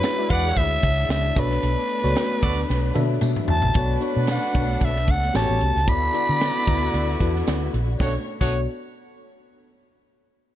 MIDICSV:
0, 0, Header, 1, 7, 480
1, 0, Start_track
1, 0, Key_signature, 2, "minor"
1, 0, Tempo, 530504
1, 1478, Time_signature, 4, 2, 24, 8
1, 9546, End_track
2, 0, Start_track
2, 0, Title_t, "Soprano saxophone"
2, 0, Program_c, 0, 64
2, 0, Note_on_c, 0, 71, 104
2, 271, Note_on_c, 0, 78, 110
2, 284, Note_off_c, 0, 71, 0
2, 517, Note_on_c, 0, 76, 105
2, 531, Note_off_c, 0, 78, 0
2, 997, Note_off_c, 0, 76, 0
2, 1005, Note_on_c, 0, 76, 95
2, 1262, Note_on_c, 0, 71, 92
2, 1276, Note_off_c, 0, 76, 0
2, 2931, Note_off_c, 0, 71, 0
2, 3166, Note_on_c, 0, 81, 94
2, 3609, Note_off_c, 0, 81, 0
2, 3907, Note_on_c, 0, 78, 89
2, 4385, Note_on_c, 0, 76, 90
2, 4398, Note_off_c, 0, 78, 0
2, 4621, Note_on_c, 0, 78, 99
2, 4634, Note_off_c, 0, 76, 0
2, 4850, Note_on_c, 0, 81, 95
2, 4863, Note_off_c, 0, 78, 0
2, 5327, Note_on_c, 0, 83, 113
2, 5340, Note_off_c, 0, 81, 0
2, 6763, Note_off_c, 0, 83, 0
2, 9546, End_track
3, 0, Start_track
3, 0, Title_t, "Horn section"
3, 0, Program_c, 1, 61
3, 279, Note_on_c, 1, 74, 112
3, 280, Note_on_c, 1, 68, 90
3, 280, Note_on_c, 1, 71, 107
3, 592, Note_off_c, 1, 74, 0
3, 593, Note_off_c, 1, 68, 0
3, 593, Note_off_c, 1, 71, 0
3, 2194, Note_on_c, 1, 66, 90
3, 2195, Note_on_c, 1, 69, 86
3, 2195, Note_on_c, 1, 74, 97
3, 2348, Note_off_c, 1, 66, 0
3, 2349, Note_off_c, 1, 69, 0
3, 2349, Note_off_c, 1, 74, 0
3, 3400, Note_on_c, 1, 71, 96
3, 3401, Note_on_c, 1, 66, 83
3, 3404, Note_on_c, 1, 62, 89
3, 4576, Note_off_c, 1, 66, 0
3, 4576, Note_off_c, 1, 71, 0
3, 4578, Note_off_c, 1, 62, 0
3, 4841, Note_on_c, 1, 67, 78
3, 4842, Note_on_c, 1, 61, 78
3, 4842, Note_on_c, 1, 73, 94
3, 5075, Note_off_c, 1, 67, 0
3, 5076, Note_off_c, 1, 61, 0
3, 5076, Note_off_c, 1, 73, 0
3, 5326, Note_on_c, 1, 69, 82
3, 5331, Note_on_c, 1, 74, 99
3, 5332, Note_on_c, 1, 71, 85
3, 6969, Note_off_c, 1, 69, 0
3, 6971, Note_off_c, 1, 74, 0
3, 6972, Note_off_c, 1, 71, 0
3, 7244, Note_on_c, 1, 73, 92
3, 7247, Note_on_c, 1, 57, 85
3, 7247, Note_on_c, 1, 66, 75
3, 7348, Note_off_c, 1, 73, 0
3, 7350, Note_off_c, 1, 57, 0
3, 7350, Note_off_c, 1, 66, 0
3, 7607, Note_on_c, 1, 57, 88
3, 7607, Note_on_c, 1, 66, 94
3, 7608, Note_on_c, 1, 73, 109
3, 7775, Note_off_c, 1, 57, 0
3, 7775, Note_off_c, 1, 66, 0
3, 7775, Note_off_c, 1, 73, 0
3, 9546, End_track
4, 0, Start_track
4, 0, Title_t, "FM electric piano"
4, 0, Program_c, 2, 5
4, 0, Control_c, 2, 64, 127
4, 0, Note_on_c, 2, 56, 72
4, 0, Note_on_c, 2, 62, 67
4, 0, Note_on_c, 2, 64, 69
4, 0, Note_on_c, 2, 66, 66
4, 0, Note_on_c, 2, 73, 88
4, 104, Note_off_c, 2, 56, 0
4, 105, Note_off_c, 2, 62, 0
4, 107, Note_off_c, 2, 64, 0
4, 107, Note_off_c, 2, 66, 0
4, 110, Note_off_c, 2, 73, 0
4, 156, Note_on_c, 2, 56, 65
4, 163, Note_on_c, 2, 62, 64
4, 165, Note_on_c, 2, 64, 64
4, 169, Note_on_c, 2, 66, 60
4, 169, Note_on_c, 2, 74, 82
4, 899, Note_off_c, 2, 56, 0
4, 902, Note_off_c, 2, 62, 0
4, 903, Note_off_c, 2, 64, 0
4, 905, Note_off_c, 2, 66, 0
4, 905, Note_off_c, 2, 74, 0
4, 1223, Note_on_c, 2, 59, 87
4, 1228, Note_on_c, 2, 62, 70
4, 1234, Note_on_c, 2, 66, 79
4, 1234, Note_on_c, 2, 69, 72
4, 1241, Note_on_c, 2, 73, 90
4, 1249, Control_c, 2, 64, 0
4, 1394, Control_c, 2, 64, 127
4, 1711, Note_off_c, 2, 59, 0
4, 1713, Note_off_c, 2, 62, 0
4, 1716, Note_off_c, 2, 66, 0
4, 1716, Note_off_c, 2, 69, 0
4, 1719, Note_off_c, 2, 73, 0
4, 1835, Note_on_c, 2, 59, 87
4, 1842, Note_on_c, 2, 62, 77
4, 1843, Note_on_c, 2, 66, 80
4, 1847, Note_on_c, 2, 69, 78
4, 1847, Note_on_c, 2, 73, 95
4, 2482, Note_off_c, 2, 59, 0
4, 2486, Note_off_c, 2, 62, 0
4, 2486, Note_off_c, 2, 66, 0
4, 2488, Note_off_c, 2, 69, 0
4, 2488, Note_off_c, 2, 73, 0
4, 2657, Note_on_c, 2, 59, 87
4, 2664, Note_on_c, 2, 62, 83
4, 2664, Note_on_c, 2, 66, 83
4, 2667, Note_on_c, 2, 69, 83
4, 2671, Note_on_c, 2, 76, 97
4, 3228, Note_off_c, 2, 59, 0
4, 3231, Note_off_c, 2, 62, 0
4, 3231, Note_off_c, 2, 66, 0
4, 3232, Note_off_c, 2, 69, 0
4, 3235, Note_off_c, 2, 76, 0
4, 3394, Note_on_c, 2, 62, 65
4, 3396, Note_on_c, 2, 59, 72
4, 3397, Note_on_c, 2, 69, 60
4, 3398, Note_on_c, 2, 66, 65
4, 3409, Control_c, 2, 64, 0
4, 3409, Note_on_c, 2, 73, 84
4, 3566, Control_c, 2, 64, 127
4, 3585, Note_off_c, 2, 62, 0
4, 3586, Note_off_c, 2, 59, 0
4, 3587, Note_off_c, 2, 69, 0
4, 3588, Note_off_c, 2, 66, 0
4, 3593, Note_off_c, 2, 73, 0
4, 3624, Note_on_c, 2, 62, 72
4, 3626, Note_on_c, 2, 66, 77
4, 3627, Note_on_c, 2, 59, 80
4, 3633, Note_on_c, 2, 69, 74
4, 3636, Note_on_c, 2, 73, 86
4, 4009, Note_off_c, 2, 62, 0
4, 4010, Note_off_c, 2, 66, 0
4, 4011, Note_off_c, 2, 59, 0
4, 4014, Note_off_c, 2, 69, 0
4, 4015, Note_off_c, 2, 73, 0
4, 4104, Note_on_c, 2, 59, 69
4, 4107, Note_on_c, 2, 62, 62
4, 4113, Note_on_c, 2, 69, 64
4, 4114, Note_on_c, 2, 66, 67
4, 4119, Note_on_c, 2, 73, 73
4, 4817, Note_off_c, 2, 59, 0
4, 4818, Note_off_c, 2, 66, 0
4, 4823, Note_off_c, 2, 69, 0
4, 4826, Note_off_c, 2, 73, 0
4, 4828, Note_on_c, 2, 59, 85
4, 4829, Note_on_c, 2, 66, 70
4, 4833, Note_off_c, 2, 62, 0
4, 4834, Note_on_c, 2, 67, 72
4, 4834, Note_on_c, 2, 69, 80
4, 4837, Note_on_c, 2, 73, 84
4, 4849, Control_c, 2, 64, 0
4, 5006, Control_c, 2, 64, 127
4, 5225, Note_off_c, 2, 59, 0
4, 5225, Note_off_c, 2, 66, 0
4, 5228, Note_off_c, 2, 67, 0
4, 5228, Note_off_c, 2, 69, 0
4, 5229, Note_off_c, 2, 73, 0
4, 5312, Note_on_c, 2, 59, 67
4, 5312, Note_on_c, 2, 66, 62
4, 5313, Note_on_c, 2, 64, 61
4, 5318, Note_on_c, 2, 69, 66
4, 5320, Note_on_c, 2, 74, 77
4, 5331, Control_c, 2, 64, 0
4, 5504, Note_off_c, 2, 66, 0
4, 5504, Control_c, 2, 64, 127
4, 5505, Note_off_c, 2, 59, 0
4, 5505, Note_off_c, 2, 64, 0
4, 5507, Note_off_c, 2, 69, 0
4, 5508, Note_off_c, 2, 74, 0
4, 5552, Note_on_c, 2, 59, 79
4, 5554, Note_on_c, 2, 66, 73
4, 5556, Note_on_c, 2, 64, 67
4, 5558, Note_on_c, 2, 69, 67
4, 5563, Note_on_c, 2, 74, 88
4, 5933, Note_off_c, 2, 59, 0
4, 5935, Note_off_c, 2, 64, 0
4, 5935, Note_off_c, 2, 66, 0
4, 5936, Note_off_c, 2, 69, 0
4, 5939, Note_off_c, 2, 74, 0
4, 6030, Note_on_c, 2, 59, 84
4, 6030, Note_on_c, 2, 64, 72
4, 6031, Note_on_c, 2, 66, 75
4, 6034, Note_on_c, 2, 69, 79
4, 6037, Note_on_c, 2, 71, 85
4, 6412, Note_off_c, 2, 64, 0
4, 6413, Note_off_c, 2, 59, 0
4, 6413, Note_off_c, 2, 66, 0
4, 6415, Note_off_c, 2, 69, 0
4, 6416, Note_off_c, 2, 71, 0
4, 6513, Note_on_c, 2, 59, 85
4, 6513, Note_on_c, 2, 64, 85
4, 6513, Note_on_c, 2, 66, 81
4, 6517, Note_on_c, 2, 69, 80
4, 6521, Note_on_c, 2, 71, 96
4, 7075, Note_off_c, 2, 66, 0
4, 7076, Note_off_c, 2, 59, 0
4, 7076, Note_off_c, 2, 64, 0
4, 7077, Note_off_c, 2, 69, 0
4, 7080, Note_off_c, 2, 71, 0
4, 7238, Note_on_c, 2, 69, 75
4, 7242, Note_on_c, 2, 59, 80
4, 7243, Note_on_c, 2, 73, 81
4, 7245, Note_on_c, 2, 66, 65
4, 7246, Note_on_c, 2, 62, 70
4, 7251, Control_c, 2, 64, 0
4, 7379, Note_off_c, 2, 69, 0
4, 7382, Note_off_c, 2, 59, 0
4, 7382, Note_off_c, 2, 73, 0
4, 7383, Note_off_c, 2, 66, 0
4, 7384, Note_off_c, 2, 62, 0
4, 7609, Note_on_c, 2, 73, 84
4, 7611, Note_on_c, 2, 66, 71
4, 7612, Note_on_c, 2, 62, 68
4, 7613, Note_on_c, 2, 69, 63
4, 7614, Note_on_c, 2, 59, 79
4, 7832, Note_off_c, 2, 73, 0
4, 7833, Note_off_c, 2, 66, 0
4, 7834, Note_off_c, 2, 59, 0
4, 7834, Note_off_c, 2, 62, 0
4, 7834, Note_off_c, 2, 69, 0
4, 9546, End_track
5, 0, Start_track
5, 0, Title_t, "String section"
5, 0, Program_c, 3, 48
5, 0, Note_on_c, 3, 56, 87
5, 0, Note_on_c, 3, 62, 82
5, 0, Note_on_c, 3, 64, 75
5, 1192, Note_off_c, 3, 64, 0
5, 1211, Note_on_c, 3, 59, 80
5, 1217, Note_off_c, 3, 56, 0
5, 1219, Note_on_c, 3, 57, 90
5, 3359, Note_off_c, 3, 62, 0
5, 3364, Note_off_c, 3, 59, 0
5, 3367, Note_off_c, 3, 57, 0
5, 3383, Note_on_c, 3, 59, 78
5, 3387, Note_on_c, 3, 57, 91
5, 3395, Note_on_c, 3, 62, 97
5, 4817, Note_off_c, 3, 59, 0
5, 4823, Note_off_c, 3, 62, 0
5, 4824, Note_on_c, 3, 55, 69
5, 4827, Note_on_c, 3, 61, 78
5, 5294, Note_off_c, 3, 57, 0
5, 5301, Note_on_c, 3, 64, 75
5, 5305, Note_on_c, 3, 66, 93
5, 5306, Note_off_c, 3, 55, 0
5, 5307, Note_on_c, 3, 50, 86
5, 5308, Note_off_c, 3, 61, 0
5, 5308, Note_on_c, 3, 59, 75
5, 7210, Note_off_c, 3, 64, 0
5, 7212, Note_off_c, 3, 66, 0
5, 7214, Note_off_c, 3, 50, 0
5, 7214, Note_off_c, 3, 59, 0
5, 7218, Note_on_c, 3, 57, 65
5, 7218, Note_on_c, 3, 62, 62
5, 7226, Note_on_c, 3, 47, 65
5, 7226, Note_on_c, 3, 73, 80
5, 7451, Note_off_c, 3, 57, 0
5, 7451, Note_off_c, 3, 62, 0
5, 7455, Note_off_c, 3, 47, 0
5, 7455, Note_off_c, 3, 73, 0
5, 9546, End_track
6, 0, Start_track
6, 0, Title_t, "Fingered electric bass"
6, 0, Program_c, 4, 33
6, 275, Note_on_c, 4, 40, 88
6, 462, Note_off_c, 4, 40, 0
6, 510, Note_on_c, 4, 38, 94
6, 699, Note_off_c, 4, 38, 0
6, 753, Note_on_c, 4, 37, 95
6, 941, Note_off_c, 4, 37, 0
6, 985, Note_on_c, 4, 37, 96
6, 1176, Note_off_c, 4, 37, 0
6, 1233, Note_on_c, 4, 35, 103
6, 1421, Note_off_c, 4, 35, 0
6, 1476, Note_on_c, 4, 35, 105
6, 1577, Note_off_c, 4, 35, 0
6, 1846, Note_on_c, 4, 37, 87
6, 1932, Note_off_c, 4, 37, 0
6, 2198, Note_on_c, 4, 38, 99
6, 2384, Note_off_c, 4, 38, 0
6, 2440, Note_on_c, 4, 35, 95
6, 2625, Note_off_c, 4, 35, 0
6, 2677, Note_on_c, 4, 47, 80
6, 2864, Note_off_c, 4, 47, 0
6, 2915, Note_on_c, 4, 47, 98
6, 3017, Note_off_c, 4, 47, 0
6, 3158, Note_on_c, 4, 40, 82
6, 3259, Note_off_c, 4, 40, 0
6, 3283, Note_on_c, 4, 34, 84
6, 3371, Note_off_c, 4, 34, 0
6, 3392, Note_on_c, 4, 35, 107
6, 3581, Note_off_c, 4, 35, 0
6, 3768, Note_on_c, 4, 47, 101
6, 3954, Note_off_c, 4, 47, 0
6, 4116, Note_on_c, 4, 35, 87
6, 4303, Note_off_c, 4, 35, 0
6, 4355, Note_on_c, 4, 35, 93
6, 4598, Note_off_c, 4, 35, 0
6, 4598, Note_on_c, 4, 37, 93
6, 4785, Note_off_c, 4, 37, 0
6, 4837, Note_on_c, 4, 33, 104
6, 4938, Note_off_c, 4, 33, 0
6, 4969, Note_on_c, 4, 33, 89
6, 5054, Note_off_c, 4, 33, 0
6, 5084, Note_on_c, 4, 36, 89
6, 5182, Note_off_c, 4, 36, 0
6, 5210, Note_on_c, 4, 37, 84
6, 5319, Note_off_c, 4, 37, 0
6, 5319, Note_on_c, 4, 38, 102
6, 5505, Note_off_c, 4, 38, 0
6, 5693, Note_on_c, 4, 50, 92
6, 5877, Note_off_c, 4, 50, 0
6, 6038, Note_on_c, 4, 38, 94
6, 6224, Note_off_c, 4, 38, 0
6, 6278, Note_on_c, 4, 38, 105
6, 6465, Note_off_c, 4, 38, 0
6, 6520, Note_on_c, 4, 40, 75
6, 6706, Note_off_c, 4, 40, 0
6, 6764, Note_on_c, 4, 38, 89
6, 6948, Note_off_c, 4, 38, 0
6, 7002, Note_on_c, 4, 34, 94
6, 7187, Note_off_c, 4, 34, 0
6, 7239, Note_on_c, 4, 35, 94
6, 7380, Note_off_c, 4, 35, 0
6, 7610, Note_on_c, 4, 35, 89
6, 7832, Note_off_c, 4, 35, 0
6, 9546, End_track
7, 0, Start_track
7, 0, Title_t, "Drums"
7, 27, Note_on_c, 9, 42, 85
7, 28, Note_on_c, 9, 54, 80
7, 36, Note_on_c, 9, 38, 103
7, 117, Note_off_c, 9, 42, 0
7, 119, Note_off_c, 9, 54, 0
7, 126, Note_off_c, 9, 38, 0
7, 273, Note_on_c, 9, 42, 68
7, 274, Note_on_c, 9, 36, 99
7, 364, Note_off_c, 9, 36, 0
7, 364, Note_off_c, 9, 42, 0
7, 510, Note_on_c, 9, 42, 74
7, 512, Note_on_c, 9, 36, 83
7, 601, Note_off_c, 9, 42, 0
7, 603, Note_off_c, 9, 36, 0
7, 750, Note_on_c, 9, 42, 82
7, 753, Note_on_c, 9, 36, 87
7, 841, Note_off_c, 9, 42, 0
7, 844, Note_off_c, 9, 36, 0
7, 994, Note_on_c, 9, 42, 89
7, 999, Note_on_c, 9, 38, 115
7, 999, Note_on_c, 9, 54, 87
7, 1084, Note_off_c, 9, 42, 0
7, 1089, Note_off_c, 9, 38, 0
7, 1089, Note_off_c, 9, 54, 0
7, 1234, Note_on_c, 9, 36, 105
7, 1236, Note_on_c, 9, 42, 74
7, 1325, Note_off_c, 9, 36, 0
7, 1327, Note_off_c, 9, 42, 0
7, 1369, Note_on_c, 9, 38, 36
7, 1460, Note_off_c, 9, 38, 0
7, 1473, Note_on_c, 9, 42, 100
7, 1564, Note_off_c, 9, 42, 0
7, 1709, Note_on_c, 9, 42, 64
7, 1799, Note_off_c, 9, 42, 0
7, 1847, Note_on_c, 9, 38, 30
7, 1937, Note_off_c, 9, 38, 0
7, 1952, Note_on_c, 9, 42, 95
7, 1958, Note_on_c, 9, 54, 81
7, 1961, Note_on_c, 9, 38, 116
7, 2042, Note_off_c, 9, 42, 0
7, 2048, Note_off_c, 9, 54, 0
7, 2051, Note_off_c, 9, 38, 0
7, 2197, Note_on_c, 9, 36, 102
7, 2197, Note_on_c, 9, 46, 73
7, 2287, Note_off_c, 9, 36, 0
7, 2287, Note_off_c, 9, 46, 0
7, 2442, Note_on_c, 9, 38, 57
7, 2532, Note_off_c, 9, 38, 0
7, 2674, Note_on_c, 9, 48, 78
7, 2764, Note_off_c, 9, 48, 0
7, 2907, Note_on_c, 9, 47, 86
7, 2919, Note_on_c, 9, 54, 86
7, 2997, Note_off_c, 9, 47, 0
7, 3009, Note_off_c, 9, 54, 0
7, 3043, Note_on_c, 9, 45, 81
7, 3134, Note_off_c, 9, 45, 0
7, 3148, Note_on_c, 9, 43, 99
7, 3239, Note_off_c, 9, 43, 0
7, 3275, Note_on_c, 9, 43, 99
7, 3366, Note_off_c, 9, 43, 0
7, 3384, Note_on_c, 9, 42, 103
7, 3395, Note_on_c, 9, 36, 116
7, 3475, Note_off_c, 9, 42, 0
7, 3485, Note_off_c, 9, 36, 0
7, 3630, Note_on_c, 9, 42, 59
7, 3720, Note_off_c, 9, 42, 0
7, 3864, Note_on_c, 9, 42, 92
7, 3874, Note_on_c, 9, 38, 109
7, 3881, Note_on_c, 9, 54, 77
7, 3955, Note_off_c, 9, 42, 0
7, 3964, Note_off_c, 9, 38, 0
7, 3972, Note_off_c, 9, 54, 0
7, 4110, Note_on_c, 9, 42, 73
7, 4116, Note_on_c, 9, 36, 101
7, 4201, Note_off_c, 9, 42, 0
7, 4207, Note_off_c, 9, 36, 0
7, 4347, Note_on_c, 9, 42, 77
7, 4355, Note_on_c, 9, 36, 89
7, 4438, Note_off_c, 9, 42, 0
7, 4445, Note_off_c, 9, 36, 0
7, 4488, Note_on_c, 9, 38, 33
7, 4578, Note_off_c, 9, 38, 0
7, 4593, Note_on_c, 9, 42, 81
7, 4596, Note_on_c, 9, 36, 84
7, 4684, Note_off_c, 9, 42, 0
7, 4686, Note_off_c, 9, 36, 0
7, 4729, Note_on_c, 9, 38, 31
7, 4819, Note_off_c, 9, 38, 0
7, 4835, Note_on_c, 9, 42, 90
7, 4840, Note_on_c, 9, 38, 106
7, 4844, Note_on_c, 9, 54, 93
7, 4926, Note_off_c, 9, 42, 0
7, 4931, Note_off_c, 9, 38, 0
7, 4934, Note_off_c, 9, 54, 0
7, 5075, Note_on_c, 9, 42, 73
7, 5166, Note_off_c, 9, 42, 0
7, 5213, Note_on_c, 9, 38, 38
7, 5304, Note_off_c, 9, 38, 0
7, 5316, Note_on_c, 9, 42, 98
7, 5318, Note_on_c, 9, 36, 116
7, 5406, Note_off_c, 9, 42, 0
7, 5409, Note_off_c, 9, 36, 0
7, 5556, Note_on_c, 9, 42, 64
7, 5647, Note_off_c, 9, 42, 0
7, 5795, Note_on_c, 9, 42, 85
7, 5799, Note_on_c, 9, 54, 74
7, 5804, Note_on_c, 9, 38, 114
7, 5885, Note_off_c, 9, 42, 0
7, 5889, Note_off_c, 9, 54, 0
7, 5894, Note_off_c, 9, 38, 0
7, 6039, Note_on_c, 9, 36, 102
7, 6044, Note_on_c, 9, 42, 68
7, 6130, Note_off_c, 9, 36, 0
7, 6134, Note_off_c, 9, 42, 0
7, 6279, Note_on_c, 9, 42, 72
7, 6370, Note_off_c, 9, 42, 0
7, 6519, Note_on_c, 9, 36, 81
7, 6520, Note_on_c, 9, 42, 77
7, 6609, Note_off_c, 9, 36, 0
7, 6611, Note_off_c, 9, 42, 0
7, 6659, Note_on_c, 9, 38, 33
7, 6749, Note_off_c, 9, 38, 0
7, 6760, Note_on_c, 9, 42, 84
7, 6760, Note_on_c, 9, 54, 87
7, 6765, Note_on_c, 9, 38, 103
7, 6851, Note_off_c, 9, 42, 0
7, 6851, Note_off_c, 9, 54, 0
7, 6856, Note_off_c, 9, 38, 0
7, 7002, Note_on_c, 9, 42, 71
7, 7093, Note_off_c, 9, 42, 0
7, 7239, Note_on_c, 9, 36, 104
7, 7242, Note_on_c, 9, 38, 83
7, 7244, Note_on_c, 9, 54, 82
7, 7330, Note_off_c, 9, 36, 0
7, 7333, Note_off_c, 9, 38, 0
7, 7334, Note_off_c, 9, 54, 0
7, 7609, Note_on_c, 9, 49, 78
7, 7610, Note_on_c, 9, 36, 92
7, 7621, Note_on_c, 9, 54, 80
7, 7699, Note_off_c, 9, 49, 0
7, 7700, Note_off_c, 9, 36, 0
7, 7711, Note_off_c, 9, 54, 0
7, 9546, End_track
0, 0, End_of_file